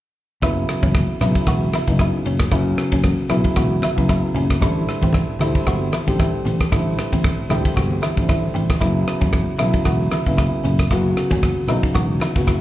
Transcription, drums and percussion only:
0.42 kick, cross-stick, ride
0.69 cross-stick, ride
0.83 kick, ride, high conga
0.94 kick, cross-stick, ride, high conga
1.21 cross-stick, ride, low conga
1.35 kick, ride
1.47 kick, cross-stick, ride, low conga
1.73 cross-stick, ride, high conga
1.87 kick, ride
1.99 kick, cross-stick, ride
2.25 ride, low conga
2.39 kick, cross-stick, ride
2.51 kick, cross-stick, ride
2.78 cross-stick, ride
2.92 kick, ride, high conga
3.03 kick, cross-stick, ride, high conga
3.29 cross-stick, ride, low conga
3.44 kick, ride
3.56 kick, cross-stick, ride, low conga
3.82 cross-stick, ride, high conga
3.98 kick, ride
4.09 kick, cross-stick, ride
4.35 ride, low conga
4.50 kick, cross-stick, ride
4.62 kick, cross-stick, ride
4.88 cross-stick, ride
5.02 kick, ride, high conga
5.13 kick, cross-stick, ride, high conga
5.39 cross-stick, ride, low conga
5.55 kick, ride
5.66 kick, cross-stick, ride, low conga
5.92 cross-stick, ride, high conga
6.08 kick, ride
6.19 kick, cross-stick, ride
6.46 ride, low conga
6.61 kick, cross-stick, ride
6.72 kick, cross-stick, ride
6.98 cross-stick, ride, low conga
7.12 kick, ride, high conga
7.24 kick, cross-stick, ride, high conga
7.50 cross-stick, ride, high conga, low conga
7.65 kick, ride
7.77 kick, cross-stick, ride
7.91 high conga
8.03 cross-stick, ride, high conga
8.17 kick, ride
8.29 kick, cross-stick, ride, high conga
8.43 high conga
8.55 ride, low conga
8.70 kick, cross-stick, ride, low conga
8.81 kick, cross-stick, ride
9.07 cross-stick, ride
9.21 kick, ride, high conga
9.32 kick, cross-stick, ride, high conga
9.59 cross-stick, ride
9.73 kick, ride
9.85 kick, cross-stick, ride, low conga
10.11 cross-stick, ride, high conga
10.26 kick, ride
10.38 kick, cross-stick, ride
10.65 ride, low conga
10.79 kick, cross-stick, ride
10.91 kick, cross-stick, ride
11.17 cross-stick, ride
11.31 kick, ride, high conga
11.43 kick, cross-stick, ride, high conga
11.68 cross-stick, ride, low conga
11.83 kick, ride
11.95 kick, cross-stick, ride, low conga
12.20 cross-stick, ride, high conga
12.35 kick, ride
12.47 kick, cross-stick, ride

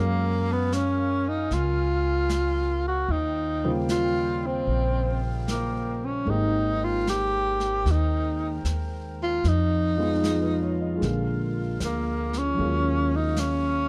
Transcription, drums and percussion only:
0.72 snare, hi-hat pedal
1.51 brush sweep, snare
2.29 snare, hi-hat pedal
3.09 brush sweep
3.89 snare, hi-hat pedal
4.67 brush sweep
5.48 snare, hi-hat pedal
6.28 brush sweep
7.07 snare, hi-hat pedal
7.60 snare
7.86 brush sweep, snare
8.65 snare, hi-hat pedal
9.44 brush sweep, snare
10.24 snare, hi-hat pedal
11.02 brush sweep, snare
11.80 snare, hi-hat pedal
12.33 snare
12.58 brush sweep
13.36 snare, hi-hat pedal

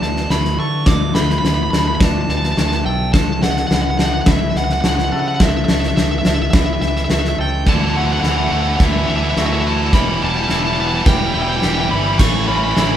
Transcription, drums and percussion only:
0.02 snare
0.16 snare
0.30 snare
0.45 snare
0.86 kick, snare
1.15 snare
1.30 snare
1.45 snare
1.73 snare
2.00 kick, snare
2.29 snare
2.44 snare
2.57 snare
2.72 snare
3.14 kick, snare
3.43 snare
3.57 snare
3.71 snare
3.99 snare
4.26 kick, snare
4.56 snare
4.70 snare
4.84 snare
4.98 snare
5.40 kick, snare
5.68 snare
5.83 snare
5.97 snare
6.25 snare
6.53 kick, snare
6.82 snare
6.96 snare
7.10 snare
7.25 snare
7.66 kick, snare
8.24 snare
8.80 kick, snare
9.37 snare
9.93 kick, snare
10.49 snare
11.06 kick, snare
11.62 snare
12.19 kick, snare, crash
12.77 snare

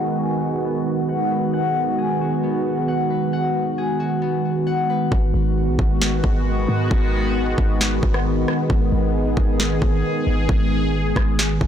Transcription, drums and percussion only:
5.12 kick
5.79 kick
6.02 snare
6.24 kick
6.91 kick
7.58 kick
7.81 snare
8.03 kick
8.14 cross-stick
8.48 cross-stick
8.70 kick
9.37 kick
9.60 snare
9.82 kick
10.49 kick
11.16 kick, cross-stick
11.39 snare
11.61 kick

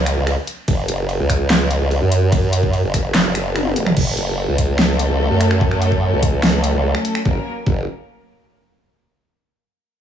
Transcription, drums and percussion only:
0.06 finger snap, closed hi-hat
0.27 finger snap, ride
0.47 closed hi-hat
0.68 kick, ride
0.88 closed hi-hat
1.09 ride
1.30 finger snap, kick, open hi-hat
1.50 snare, clap, ride
1.71 closed hi-hat
1.91 ride
2.12 closed hi-hat
2.32 kick, ride
2.53 closed hi-hat
2.63 kick
2.73 ride
2.94 finger snap, kick, open hi-hat
3.15 snare, clap, ride
3.35 finger snap, closed hi-hat
3.56 finger snap, high tom, ride
3.66 high tom
3.76 closed hi-hat
3.86 finger snap, mid tom
3.97 kick, crash
4.17 closed hi-hat
4.58 kick, closed hi-hat
4.79 snare
4.99 closed hi-hat
5.41 finger snap, closed hi-hat
5.51 finger snap
5.61 kick
5.71 finger snap
5.82 closed hi-hat
5.92 kick
6.23 kick, closed hi-hat
6.43 snare
6.64 closed hi-hat
6.95 finger snap
7.05 closed hi-hat
7.15 finger snap
7.25 kick
7.67 kick

